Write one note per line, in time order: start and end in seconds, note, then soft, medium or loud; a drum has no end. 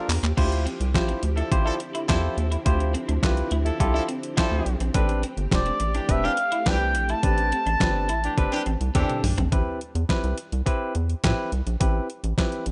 0.00 0.21 F3 loud
0.00 4.91 F3 medium
0.00 0.34 A#3 medium
0.00 0.21 D4 loud
0.00 4.91 G4 medium
0.00 0.21 A#4 loud
0.09 0.19 E2 medium
0.09 clap medium
0.09 open hi-hat medium
0.23 0.33 D#2 medium
0.23 0.32 A#3 medium
0.23 clap medium
0.23 closed hi-hat medium
0.37 0.67 D2 loud
0.37 4.91 D3 medium
0.37 9.48 C4 medium
0.37 0.46 D4 medium
0.37 0.64 E4 medium
0.37 4.91 E4 medium
0.37 0.64 F4 medium
0.37 0.64 G4 medium
0.37 0.65 C5 loud
0.37 kick loud
0.37 crash medium
0.51 muted clean electric guitar stroke soft
0.51 closed hi-hat soft
0.66 0.75 C4 medium
0.66 closed hi-hat medium
0.80 0.96 C2 medium
0.80 closed hi-hat medium
0.94 1.14 A1 medium
0.94 1.21 E4 medium
0.94 1.21 F4 medium
0.94 1.22 G4 medium
0.94 1.22 C5 loud
0.94 kick loud
0.94 snare medium
0.94 clap medium
0.94 closed hi-hat medium
1.08 1.17 C4 medium
1.08 closed hi-hat soft
1.23 1.43 D2 medium
1.23 muted clean electric guitar stroke soft
1.23 closed hi-hat medium
1.36 1.49 F3 medium
1.36 1.46 D4 medium
1.36 1.49 E4 medium
1.36 1.49 A4 medium
1.36 closed hi-hat medium
1.51 1.71 A1 loud
1.51 1.78 E4 loud
1.51 1.78 F4 medium
1.51 1.79 G4 medium
1.51 1.79 C5 loud
1.51 kick loud
1.51 closed hi-hat medium
1.65 1.75 F3 loud
1.65 1.75 D4 medium
1.65 1.75 E4 loud
1.65 1.75 A4 loud
1.80 muted clean electric guitar stroke soft
1.80 closed hi-hat medium
1.95 2.04 E4 medium
1.95 closed hi-hat medium
2.08 2.29 E2 medium
2.08 2.49 F3 loud
2.08 2.18 D4 medium
2.08 2.49 E4 loud
2.08 2.35 E4 loud
2.08 2.35 F4 medium
2.08 2.36 G4 medium
2.08 2.49 A4 loud
2.08 2.36 C5 loud
2.08 kick loud
2.08 snare loud
2.08 clap loud
2.08 closed hi-hat medium
2.37 2.57 D#2 medium
2.37 muted clean electric guitar stroke soft
2.37 closed hi-hat medium
2.52 2.60 E4 medium
2.52 closed hi-hat medium
2.65 2.95 D2 loud
2.65 2.93 E4 medium
2.65 2.93 F4 medium
2.65 2.93 G4 medium
2.65 2.93 C5 loud
2.65 kick loud
2.65 closed hi-hat medium
2.80 muted clean electric guitar stroke soft
2.80 closed hi-hat soft
2.94 3.03 C4 medium
2.94 closed hi-hat medium
3.09 3.19 D2 medium
3.09 3.18 D4 medium
3.09 closed hi-hat medium
3.22 3.42 C2 medium
3.22 3.50 E4 medium
3.22 3.50 F4 medium
3.22 3.50 G4 medium
3.22 3.50 B4 medium
3.22 kick loud
3.22 snare medium
3.22 clap medium
3.22 closed hi-hat medium
3.37 closed hi-hat soft
3.51 3.71 D2 medium
3.51 3.61 E4 medium
3.51 closed hi-hat medium
3.65 3.78 F3 medium
3.65 3.78 E4 medium
3.65 3.78 A4 medium
3.65 closed hi-hat medium
3.80 4.00 C2 loud
3.80 4.07 E4 loud
3.80 4.07 F4 medium
3.80 4.07 G4 medium
3.80 4.07 A4 loud
3.80 muted clean electric guitar stroke soft
3.80 kick loud
3.80 closed hi-hat medium
3.94 4.04 F3 loud
3.94 4.03 D4 medium
3.94 4.04 E4 loud
3.94 4.04 A4 loud
4.08 4.17 C4 medium
4.08 closed hi-hat medium
4.23 closed hi-hat medium
4.37 4.79 F3 loud
4.37 4.46 D4 medium
4.37 4.64 E4 loud
4.37 4.79 E4 loud
4.37 4.64 F4 medium
4.37 4.64 G4 medium
4.37 4.79 A4 loud
4.37 4.64 C5 loud
4.37 kick loud
4.37 snare loud
4.37 clap medium
4.37 closed hi-hat medium
4.51 4.61 D2 loud
4.51 muted clean electric guitar stroke soft
4.66 4.76 B1 medium
4.66 closed hi-hat medium
4.80 4.90 A#1 medium
4.80 4.90 C4 medium
4.80 closed hi-hat medium
4.94 5.24 A1 loud
4.94 9.48 A3 medium
4.94 5.04 A3 medium
4.94 5.21 C4 medium
4.94 5.21 D4 medium
4.94 9.48 G4 medium
4.94 5.22 G4 medium
4.94 5.22 B4 loud
4.94 kick loud
4.94 closed hi-hat loud
5.09 muted clean electric guitar stroke soft
5.09 closed hi-hat soft
5.23 5.32 C4 medium
5.23 closed hi-hat medium
5.37 5.47 G1 medium
5.37 closed hi-hat medium
5.51 5.71 E1 loud
5.51 5.78 C4 medium
5.51 5.79 D4 medium
5.51 5.79 G4 medium
5.51 5.79 C5 medium
5.51 6.12 D5 loud
5.51 kick loud
5.51 snare medium
5.51 clap medium
5.51 closed hi-hat medium
5.66 5.75 C4 medium
5.66 closed hi-hat soft
5.80 6.00 A1 medium
5.80 muted clean electric guitar stroke soft
5.80 closed hi-hat medium
5.94 6.07 E3 medium
5.94 6.04 D4 medium
5.94 6.07 D4 medium
5.94 6.07 G4 medium
5.94 closed hi-hat soft
6.08 6.28 E1 medium
6.08 6.35 C4 medium
6.08 6.36 D4 medium
6.08 6.36 G4 medium
6.08 6.36 B4 medium
6.08 6.26 E5 loud
6.08 kick loud
6.08 closed hi-hat medium
6.24 6.33 E3 medium
6.24 6.33 D4 medium
6.24 6.33 D4 loud
6.24 6.33 G4 loud
6.24 6.69 F5 loud
6.37 muted clean electric guitar stroke soft
6.37 closed hi-hat medium
6.52 6.61 E4 medium
6.52 closed hi-hat medium
6.66 6.96 C2 medium
6.66 7.08 E3 loud
6.66 6.93 C4 medium
6.66 6.93 D4 medium
6.66 6.75 D4 medium
6.66 7.08 D4 loud
6.66 6.93 G4 medium
6.66 7.08 G4 loud
6.66 6.93 B4 medium
6.66 7.09 G5 loud
6.66 kick loud
6.66 snare loud
6.66 clap loud
6.66 closed hi-hat medium
6.95 7.14 A#1 medium
6.95 muted clean electric guitar stroke soft
6.95 closed hi-hat medium
7.09 7.18 E4 medium
7.09 9.20 A5 loud
7.09 closed hi-hat medium
7.23 7.53 A1 loud
7.23 7.50 C4 medium
7.23 7.50 D4 medium
7.23 7.50 G4 medium
7.23 7.50 B4 medium
7.23 kick loud
7.23 closed hi-hat medium
7.38 muted clean electric guitar stroke soft
7.38 closed hi-hat soft
7.52 7.61 C4 medium
7.52 closed hi-hat medium
7.66 7.76 A1 medium
7.66 7.75 D4 medium
7.66 closed hi-hat medium
7.80 8.11 G1 loud
7.80 8.07 C4 medium
7.80 8.07 D4 medium
7.80 8.07 G4 medium
7.80 8.07 B4 medium
7.80 kick loud
7.80 snare loud
7.80 clap medium
7.80 closed hi-hat medium
8.09 8.29 A1 medium
8.09 8.18 E4 medium
8.09 closed hi-hat medium
8.23 8.35 E3 medium
8.23 8.36 D4 medium
8.23 8.36 G4 medium
8.23 closed hi-hat medium
8.37 8.47 G1 loud
8.37 8.64 C4 loud
8.37 8.64 D4 medium
8.37 8.65 G4 medium
8.37 8.65 B4 loud
8.37 muted clean electric guitar stroke soft
8.37 kick loud
8.37 closed hi-hat medium
8.52 8.61 E3 medium
8.52 8.61 D4 medium
8.52 8.61 G4 loud
8.52 closed hi-hat soft
8.66 8.76 A1 loud
8.66 8.75 C4 medium
8.66 closed hi-hat medium
8.81 8.90 C2 medium
8.81 closed hi-hat medium
8.95 9.05 E2 medium
8.95 9.36 E3 medium
8.95 9.21 C4 loud
8.95 9.36 D4 medium
8.95 9.21 D4 medium
8.95 9.04 D4 medium
8.95 9.36 G4 loud
8.95 9.22 G4 medium
8.95 9.22 A4 loud
8.95 kick loud
8.95 closed hi-hat medium
8.95 high tom medium
9.09 muted clean electric guitar stroke soft
9.09 closed hi-hat soft
9.09 mid tom medium
9.23 9.33 B1 medium
9.23 mid tom medium
9.23 open hi-hat medium
9.38 9.48 A#1 medium
9.38 9.46 C4 medium
9.38 closed hi-hat medium
9.38 floor tom medium
9.52 9.62 A1 loud
9.52 9.79 C4 medium
9.52 9.79 E4 medium
9.52 9.79 G4 medium
9.52 9.79 B4 medium
9.52 kick loud
9.52 closed hi-hat medium
9.81 closed hi-hat medium
9.95 10.05 E2 medium
9.95 closed hi-hat medium
10.09 10.36 C4 medium
10.09 10.36 E4 medium
10.09 10.36 G4 medium
10.09 10.36 B4 medium
10.09 kick loud
10.09 snare medium
10.09 clap medium
10.09 closed hi-hat medium
10.24 10.33 C2 medium
10.24 closed hi-hat soft
10.38 closed hi-hat medium
10.52 10.62 C2 medium
10.52 closed hi-hat medium
10.66 10.93 C4 loud
10.66 10.93 E4 medium
10.66 10.93 G4 medium
10.66 10.93 B4 loud
10.66 kick loud
10.66 closed hi-hat medium
10.95 11.15 E2 medium
10.95 closed hi-hat medium
11.10 closed hi-hat medium
11.24 11.33 A2 loud
11.24 11.50 C4 loud
11.24 11.50 E4 medium
11.24 11.50 G4 medium
11.24 11.51 B4 loud
11.24 kick loud
11.24 snare loud
11.24 clap medium
11.24 closed hi-hat medium
11.52 11.62 C2 medium
11.52 closed hi-hat medium
11.67 11.76 A#1 medium
11.67 closed hi-hat medium
11.80 12.00 A1 loud
11.80 12.07 C4 medium
11.80 12.07 E4 medium
11.80 12.07 G4 medium
11.80 12.07 B4 medium
11.80 kick loud
11.80 closed hi-hat loud
12.10 closed hi-hat medium
12.24 12.33 A1 medium
12.24 closed hi-hat medium
12.37 12.64 C4 medium
12.37 12.64 E4 medium
12.37 12.65 G4 medium
12.37 12.65 B4 medium
12.37 kick loud
12.37 snare medium
12.37 clap medium
12.37 closed hi-hat medium
12.52 closed hi-hat soft
12.66 12.72 A1 medium
12.66 closed hi-hat medium